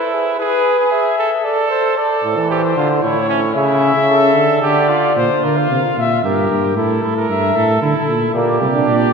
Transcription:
0.00 0.38 E4 medium
0.00 0.12 B4 medium
0.13 0.38 G#4 medium
0.38 0.78 G#4 medium
0.38 0.90 B4 medium
0.79 1.17 G#4 medium
0.92 1.46 E5 medium
1.19 1.30 A4 medium
1.44 1.96 A4 medium
1.44 1.70 D5 medium
1.70 1.99 C5 medium
1.97 2.49 A4 medium
1.97 2.31 D5 medium
2.23 2.38 A2 medium
2.37 2.76 E3 loud
2.50 2.62 G4 medium
2.50 3.04 C5 medium
2.77 3.02 D3 medium
2.77 2.89 F4 medium
3.03 3.54 A2 medium
3.03 3.28 E4 medium
3.03 3.55 C#5 medium
3.29 3.41 C#4 medium
3.55 3.94 C#3 loud
3.55 4.07 E4 medium
3.55 4.60 E5 medium
3.95 4.36 C#3 medium
4.09 4.61 A4 medium
4.35 4.62 D3 medium
4.62 5.16 D3 medium
4.62 4.90 G4 medium
4.62 5.16 D5 medium
4.89 5.15 F4 medium
5.16 5.29 A#2 medium
5.16 6.20 F4 medium
5.16 5.46 C5 medium
5.43 5.70 D3 medium
5.43 5.59 A#4 medium
5.57 5.97 F5 medium
5.70 5.82 C3 medium
5.97 6.23 A#2 medium
5.97 6.24 E5 medium
6.24 6.50 G2 medium
6.24 6.76 G4 medium
6.24 6.76 A#4 medium
6.50 6.78 G2 medium
6.76 7.02 A2 medium
6.76 7.02 E4 medium
6.76 7.29 A4 medium
7.03 7.28 A2 medium
7.03 7.15 E4 medium
7.16 7.57 A#4 medium
7.29 7.55 G2 medium
7.29 7.82 E5 medium
7.56 7.81 A2 medium
7.56 7.81 A4 medium
7.82 7.94 D3 medium
7.82 8.33 E4 medium
7.82 8.36 A4 medium
8.08 8.34 A#2 medium
8.34 8.60 A#2 medium
8.34 8.59 A#3 medium
8.34 9.13 G4 medium
8.34 8.87 D5 medium
8.61 8.89 C3 medium
8.61 8.67 G3 medium
8.74 9.13 D4 medium
8.88 9.13 A#2 medium
8.88 9.13 D5 medium

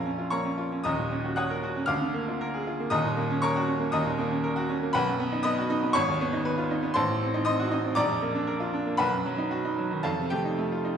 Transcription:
0.00 0.89 A#1 medium
0.00 0.89 F2 medium
0.00 0.32 A#3 medium
0.00 0.06 C#4 medium
0.00 0.19 F4 medium
0.00 0.89 G#4 medium
0.00 0.89 A#4 medium
0.00 0.89 F5 medium
0.00 0.89 G#5 medium
0.00 0.31 A#5 medium
0.06 0.27 C#4 medium
0.19 0.40 F4 medium
0.30 0.54 A#3 medium
0.30 0.81 C#5 medium
0.30 0.81 A#5 medium
0.30 0.84 C#6 medium
0.45 0.67 C#4 medium
0.58 0.80 F4 medium
0.72 0.86 C#4 medium
0.84 1.85 D#1 medium
0.84 1.86 D#2 medium
0.84 1.34 D#5 medium
0.84 1.33 A#5 medium
0.84 1.36 D#6 loud
0.98 1.19 A#2 medium
1.11 1.32 C#4 medium
1.24 1.45 F#4 medium
1.36 1.58 C#5 medium
1.36 1.85 F#5 medium
1.36 1.85 D#6 medium
1.36 1.88 F#6 medium
1.50 1.71 A#4 medium
1.63 1.84 F#4 medium
1.76 1.89 C#4 medium
1.86 2.89 D2 medium
1.86 2.88 F5 medium
1.86 2.87 D6 medium
1.86 2.91 F6 loud
2.02 2.22 D3 medium
2.14 2.35 A#3 medium
2.28 2.49 F4 medium
2.41 2.62 A#4 medium
2.54 2.74 G#4 medium
2.67 2.87 F4 medium
2.80 2.92 A#3 medium
2.90 3.89 D#1 medium
2.90 3.90 D#2 medium
2.90 3.39 D#5 medium
2.90 3.39 A#5 medium
2.90 3.42 D#6 loud
3.05 3.25 A#2 medium
3.17 3.38 A#3 medium
3.30 3.51 C#4 medium
3.42 3.63 A#4 medium
3.42 3.89 C#5 medium
3.42 3.89 A#5 medium
3.42 3.92 C#6 loud
3.56 3.76 F#4 medium
3.67 3.88 C#4 medium
3.80 4.00 A#3 medium
3.92 4.90 D#2 medium
3.92 4.40 D#5 medium
3.92 4.40 A#5 medium
3.92 4.43 D#6 loud
4.06 4.26 A#2 medium
4.18 4.38 A#3 medium
4.31 4.51 C#4 medium
4.44 4.63 A#4 medium
4.56 4.76 F#4 medium
4.69 4.89 C#4 medium
4.83 4.94 A#3 medium
4.93 5.92 B1 loud
4.93 5.41 B4 medium
4.93 5.41 F#5 medium
4.93 5.43 B5 loud
5.07 5.27 F#2 medium
5.20 5.39 B3 medium
5.32 5.52 D#4 medium
5.43 5.64 B3 medium
5.43 5.91 D#5 medium
5.43 5.91 B5 medium
5.43 5.94 D#6 loud
5.58 5.77 F#4 medium
5.70 5.90 D#4 medium
5.83 5.95 B3 medium
5.93 6.93 G#1 loud
5.93 6.91 C#5 medium
5.93 6.95 C#6 loud
6.08 6.28 D#2 medium
6.21 6.40 B3 medium
6.33 6.53 D#4 medium
6.45 6.65 B4 medium
6.58 6.78 F4 medium
6.71 6.91 D#4 medium
6.83 6.95 B3 medium
6.94 7.94 A1 medium
6.94 7.42 C5 medium
6.94 7.42 A5 medium
6.94 7.44 C6 loud
7.08 7.28 A2 medium
7.21 7.41 C4 medium
7.34 7.54 D#4 medium
7.45 7.66 C4 medium
7.45 7.93 D#5 medium
7.45 7.93 C6 medium
7.45 7.96 D#6 loud
7.59 7.79 F#4 medium
7.71 7.92 D#4 medium
7.84 7.97 C4 medium
7.95 8.96 A#1 medium
7.95 8.95 D5 medium
7.95 8.95 A#5 medium
7.95 8.98 D6 loud
8.09 8.29 F2 medium
8.22 8.42 A#3 medium
8.35 8.55 D4 medium
8.47 8.68 A#4 medium
8.60 8.81 F4 medium
8.74 8.94 D4 medium
8.86 8.99 A#3 medium
8.97 10.01 B1 medium
8.97 10.00 B4 medium
8.97 10.00 F#5 medium
8.97 10.03 B5 loud
9.12 9.33 F#2 medium
9.25 9.46 F#3 medium
9.38 9.59 D#4 medium
9.51 9.72 F#4 medium
9.65 9.86 D#4 medium
9.78 9.99 F#3 medium
9.91 10.04 D#3 medium
10.03 10.97 F2 medium
10.03 10.29 A4 medium
10.03 10.29 F5 medium
10.03 10.30 A5 loud
10.18 10.39 C3 medium
10.30 10.53 A3 medium
10.30 10.97 G4 medium
10.30 10.97 G5 medium
10.45 10.66 D#4 medium
10.59 10.79 A3 medium
10.72 10.93 F4 medium
10.85 10.97 D#4 medium

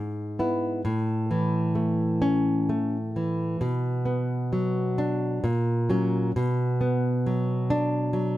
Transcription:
0.00 0.82 G#2 soft
0.39 0.81 B3 soft
0.39 0.81 E4 medium
0.85 3.56 A2 medium
1.31 2.69 E3 soft
1.75 2.68 A3 soft
2.22 2.96 C#4 medium
2.69 3.60 A3 soft
3.16 3.61 E3 soft
3.61 5.40 B2 medium
4.05 5.43 B3 soft
4.53 5.44 F#3 soft
4.98 5.44 D4 medium
5.44 6.32 A#2 medium
5.90 6.31 F#3 soft
5.90 6.31 C#4 medium
6.36 8.38 B2 medium
6.81 8.15 B3 medium
7.26 8.12 F#3 medium
7.70 8.38 D4 medium
8.13 8.38 F#3 medium

